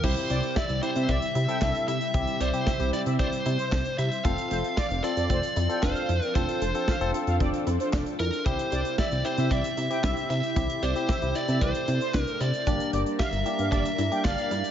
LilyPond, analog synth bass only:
\new Staff \with { instrumentName = "Analog synth bass" } { \clef bass \time 4/4 \key c \mixolydian \tempo 4 = 114 c,16 r16 c,16 r8 c,16 r16 c16 c,16 r16 c16 r16 c,16 r16 c16 r16 | c,16 r16 c,16 r8 c,16 r16 c16 c,16 r16 c16 r16 c,16 r16 c16 r16 | f,,16 r16 f,,16 r8 f,,16 r16 f,16 f,,16 r16 f,16 r16 f,,16 r16 f,16 r16 | f,,16 r16 f,,16 r8 f,,16 r16 f,16 f,,16 r16 f,16 r16 f,,16 r16 f,16 r16 |
c,16 r16 c,16 r8 c,16 r16 c16 c,16 r16 c16 r16 c,16 r16 c16 r16 | c,16 r16 c,16 r8 c,16 r16 c16 c,16 r16 c16 r16 c,16 r16 c16 r16 | g,,16 r16 g,,16 r8 g,,16 r16 g,16 g,,16 r16 g,16 r16 g,,16 r16 g,16 r16 | }